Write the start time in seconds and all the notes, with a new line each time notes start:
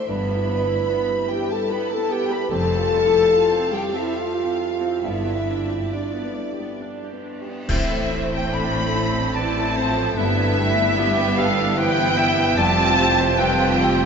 Already playing: A3 D4 E4 E5
0.07 G1 G2 E3 B3 B4 B5
0.28 G3
0.36 E4
0.48 B3
0.63 D4
0.68 E4
0.88 B3 E4
1.08 G3
1.17 B3
1.29 E3 G4 G5
1.43 G4
1.49 G3 A4 A5
1.69 B3 E4 B4 B5
1.90 E4 A4 A5
1.97 B3
2.10 B3 G4 G5
2.24 G4
2.30 G3 B4 B5
2.51 F1 F2 G3 C4 A4 F5 A5
2.70 C4
2.78 F4
2.90 F4
3.06 E4 G4
3.30 F4
3.51 C4
3.60 C4
3.72 G3 G4 G5
3.88 G4
3.93 C4 E4 E5
4.14 F4 F5
4.36 G4
4.44 C4
4.58 F4
4.74 G4
4.81 C4
5.03 G1 G2 G3 B3 E4 D5 E5
5.26 B3
5.34 D4
5.49 D4
5.63 C4
5.71 G4
5.94 D4 D5
6.15 B3
6.23 B3
6.37 G3
6.53 G4
6.60 B3
6.81 D4
7.04 G4
7.12 B3
7.26 D4
7.41 G4
7.47 B3
7.69 A1 A2 A3 C4 E4 C5 E5, concert bass drum, crash
7.92 A3
8.12 E4
8.33 A4 G5
8.52 C4 D4 A4 B5
8.75 A3
8.94 C4 E4
9.16 A4
9.33 E3 E4 A4 B4 D5 A5
9.57 A4
9.76 F3 C4 C5
9.97 A3
10.15 G1 G2 G3 B3 E4 B4 E5
10.38 B3
10.57 A3 G4
10.78 B4
10.97 G3 B3 E4 G4 B4
11.18 B3
11.37 D4 G4 A4 F5
11.58 B4
11.77 E3 B3 E4 B4 C5 G5
11.98 B4
12.17 E4 E5
12.37 B3
12.55 F1 F2 G3 C4 F4 G4 D5 A5
12.78 C4
12.96 G4 C5
13.19 C5
13.37 G3 C4 F4 G4 B4 G5
13.61 C4
13.78 G4 C5
13.99 C5